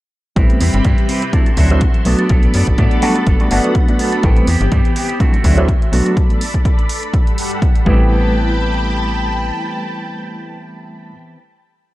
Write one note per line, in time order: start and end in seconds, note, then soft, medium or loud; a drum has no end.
0.36 0.54 A1 medium
0.36 0.59 G3 medium
0.36 0.59 A3 medium
0.36 0.59 B3 medium
0.36 0.60 C4 medium
0.36 1.32 C4 medium
0.36 0.59 C4 medium
0.36 0.59 E4 medium
0.36 0.60 E4 medium
0.36 1.32 G4 medium
0.36 0.61 B4 medium
0.36 1.32 B5 medium
0.36 kick loud
0.36 closed hi-hat medium
0.50 closed hi-hat soft
0.60 0.70 E2 medium
0.60 0.83 G3 medium
0.60 0.84 C4 medium
0.60 0.85 E4 medium
0.60 0.85 B4 medium
0.60 open hi-hat loud
0.74 0.82 G1 medium
0.74 closed hi-hat soft
0.84 0.94 G2 medium
0.84 1.07 G3 medium
0.84 1.08 C4 medium
0.84 1.09 E4 medium
0.84 1.10 B4 medium
0.84 kick loud
0.84 closed hi-hat medium
0.98 closed hi-hat soft
1.08 1.22 G3 medium
1.08 1.23 C4 medium
1.08 1.22 E4 medium
1.08 1.20 B4 medium
1.08 open hi-hat medium
1.22 1.33 C4 soft
1.22 1.33 E4 medium
1.22 1.33 B4 medium
1.22 closed hi-hat soft
1.33 1.47 F#3 medium
1.33 1.48 F#3 medium
1.33 1.48 A3 medium
1.33 1.48 C4 medium
1.33 1.47 C4 medium
1.33 1.49 D4 medium
1.33 1.49 E4 medium
1.33 1.46 E4 medium
1.33 2.05 F#4 medium
1.33 1.45 A4 medium
1.33 2.05 E5 medium
1.33 2.06 C6 medium
1.33 kick loud
1.33 closed hi-hat medium
1.46 1.57 C4 soft
1.46 1.58 E4 soft
1.46 1.57 A4 medium
1.46 closed hi-hat soft
1.57 1.88 D2 medium
1.57 2.05 F#3 medium
1.57 1.68 F#3 medium
1.57 1.68 A3 medium
1.57 2.06 C4 medium
1.57 1.68 C4 medium
1.57 1.68 D4 medium
1.57 1.68 E4 medium
1.57 2.07 E4 medium
1.57 2.07 A4 medium
1.57 kick medium
1.57 open hi-hat medium
1.70 1.84 F#3 medium
1.70 1.84 A3 medium
1.70 1.84 C4 medium
1.70 1.84 D4 medium
1.70 1.84 E4 medium
1.70 closed hi-hat soft
1.81 kick loud
1.81 closed hi-hat medium
1.94 closed hi-hat soft
2.05 2.15 B1 medium
2.05 2.76 F#3 medium
2.05 2.19 F#3 medium
2.05 2.76 A3 medium
2.05 2.76 B3 medium
2.05 2.20 B3 medium
2.05 2.76 D4 medium
2.05 2.19 D4 medium
2.05 2.76 F#4 medium
2.05 4.22 A4 medium
2.05 2.18 A4 medium
2.05 3.26 D5 medium
2.05 5.17 B5 medium
2.05 open hi-hat loud
2.19 2.29 B3 soft
2.19 2.30 D4 medium
2.19 2.30 A4 medium
2.19 closed hi-hat soft
2.29 2.48 B1 loud
2.29 2.53 F#3 medium
2.29 2.54 B3 medium
2.29 2.55 D4 medium
2.29 2.55 A4 medium
2.29 kick loud
2.29 closed hi-hat medium
2.43 closed hi-hat soft
2.54 2.64 F#2 medium
2.54 2.77 F#3 medium
2.54 2.78 B3 medium
2.54 2.78 D4 medium
2.54 2.79 A4 medium
2.54 open hi-hat loud
2.67 2.75 A1 medium
2.67 kick medium
2.67 closed hi-hat soft
2.78 2.88 A2 medium
2.78 3.00 F#3 medium
2.78 3.01 F#3 medium
2.78 3.00 A3 medium
2.78 3.00 B3 medium
2.78 3.02 B3 medium
2.78 3.00 D4 medium
2.78 3.03 D4 medium
2.78 3.00 F#4 medium
2.78 3.03 A4 medium
2.78 kick loud
2.78 closed hi-hat medium
2.91 closed hi-hat soft
3.02 3.16 F#3 medium
3.02 3.37 G3 medium
3.02 3.37 A3 medium
3.02 3.37 B3 medium
3.02 3.16 B3 medium
3.02 3.37 D4 medium
3.02 3.16 D4 medium
3.02 3.37 F#4 loud
3.02 3.15 A4 medium
3.02 open hi-hat medium
3.16 3.26 B3 soft
3.16 3.27 D4 soft
3.16 3.27 A4 medium
3.16 closed hi-hat soft
3.27 3.36 G1 medium
3.27 3.40 F#3 medium
3.27 3.40 B3 medium
3.27 3.40 D4 medium
3.27 3.39 A4 medium
3.27 4.23 F#5 medium
3.27 kick loud
3.27 closed hi-hat medium
3.40 3.48 G3 medium
3.40 3.48 A3 medium
3.40 3.48 B3 medium
3.40 3.50 B3 soft
3.40 3.49 D4 medium
3.40 3.51 D4 medium
3.40 3.49 F#4 medium
3.40 3.51 A4 medium
3.40 closed hi-hat soft
3.50 3.60 G1 medium
3.50 3.98 F#3 medium
3.50 3.85 A3 medium
3.50 3.85 B3 medium
3.50 3.99 B3 medium
3.50 3.86 D4 medium
3.50 3.99 D4 medium
3.50 3.86 F#4 medium
3.50 4.01 A4 medium
3.50 open hi-hat loud
3.64 closed hi-hat soft
3.75 kick loud
3.75 closed hi-hat medium
3.88 4.22 A3 medium
3.88 4.23 B3 medium
3.88 4.23 D4 medium
3.88 4.23 F#4 medium
3.88 closed hi-hat soft
3.99 4.13 F#3 medium
3.99 4.13 B3 medium
3.99 4.13 D4 medium
3.99 4.11 A4 medium
3.99 open hi-hat loud
4.12 4.23 B3 soft
4.12 4.24 D4 medium
4.12 4.23 A4 medium
4.12 closed hi-hat soft
4.23 4.41 A1 loud
4.23 4.46 E3 medium
4.23 4.46 G3 medium
4.23 4.46 A3 medium
4.23 4.46 B3 medium
4.23 4.47 B3 medium
4.23 4.46 C4 medium
4.23 4.48 C4 medium
4.23 4.46 E4 loud
4.23 5.19 G4 medium
4.23 4.49 G4 medium
4.23 kick loud
4.23 closed hi-hat medium
4.36 closed hi-hat soft
4.47 4.57 E2 medium
4.47 4.70 E3 medium
4.47 4.71 B3 medium
4.47 4.72 C4 medium
4.47 4.72 G4 medium
4.47 open hi-hat loud
4.61 4.69 G1 medium
4.61 closed hi-hat soft
4.72 4.81 G2 medium
4.72 4.94 E3 medium
4.72 4.95 B3 loud
4.72 4.96 C4 medium
4.72 4.97 G4 loud
4.72 kick loud
4.72 closed hi-hat medium
4.85 closed hi-hat soft
4.95 5.09 E3 medium
4.95 5.10 B3 medium
4.95 5.09 C4 medium
4.95 5.07 G4 medium
4.95 open hi-hat loud
5.09 5.20 B3 soft
5.09 5.19 C4 medium
5.09 5.20 G4 medium
5.09 closed hi-hat soft
5.19 5.33 E3 medium
5.19 5.35 F#3 medium
5.19 5.34 A3 medium
5.19 5.36 A3 medium
5.19 5.36 C4 medium
5.19 5.33 C4 medium
5.19 5.36 D4 medium
5.19 5.36 E4 loud
5.19 5.92 F#4 medium
5.19 5.32 F#4 medium
5.19 5.92 E5 medium
5.19 5.92 C6 medium
5.19 kick loud
5.19 closed hi-hat medium
5.33 5.44 A3 soft
5.33 5.44 C4 soft
5.33 5.44 F#4 medium
5.33 closed hi-hat soft
5.44 5.75 D2 medium
5.44 5.93 E3 medium
5.44 5.55 F#3 medium
5.44 5.55 A3 medium
5.44 5.91 A3 medium
5.44 5.55 C4 medium
5.44 5.93 C4 medium
5.44 5.55 D4 medium
5.44 5.55 E4 medium
5.44 5.93 F#4 medium
5.44 kick medium
5.44 open hi-hat loud
5.58 5.71 F#3 medium
5.58 5.71 A3 medium
5.58 5.71 C4 medium
5.58 5.71 D4 medium
5.58 5.71 E4 loud
5.58 closed hi-hat soft
5.68 kick loud
5.68 closed hi-hat medium
5.82 closed hi-hat soft
5.92 6.02 B1 medium
5.92 6.41 F#3 medium
5.92 6.06 A3 medium
5.92 6.41 A3 medium
5.92 6.41 B3 medium
5.92 6.42 D4 medium
5.92 6.07 D4 medium
5.92 6.42 F#4 medium
5.92 6.04 F#4 medium
5.92 7.12 A4 medium
5.92 7.12 D5 medium
5.92 7.84 B5 medium
5.92 open hi-hat loud
6.05 6.18 D4 medium
6.05 6.17 F#4 medium
6.05 closed hi-hat soft
6.17 kick loud
6.17 closed hi-hat medium
6.30 closed hi-hat soft
6.41 open hi-hat loud
6.54 kick medium
6.54 closed hi-hat soft
6.65 kick loud
6.65 closed hi-hat medium
6.79 closed hi-hat soft
6.89 open hi-hat loud
7.03 closed hi-hat soft
7.14 7.86 G3 medium
7.14 7.86 A4 medium
7.14 7.86 F#5 medium
7.14 kick loud
7.14 closed hi-hat medium
7.27 closed hi-hat soft
7.38 open hi-hat loud
7.62 kick loud
7.62 closed hi-hat medium
7.75 closed hi-hat soft
7.85 9.52 A1 medium
7.85 11.35 E3 medium
7.85 11.11 G3 medium
7.85 11.12 A3 medium
7.85 11.37 B3 medium
7.85 11.38 C4 medium
7.85 11.14 E4 medium
7.85 11.12 B4 medium
7.85 11.11 G5 medium
7.85 11.12 A5 medium
7.85 11.11 B5 medium
7.85 kick loud
7.90 11.40 G4 medium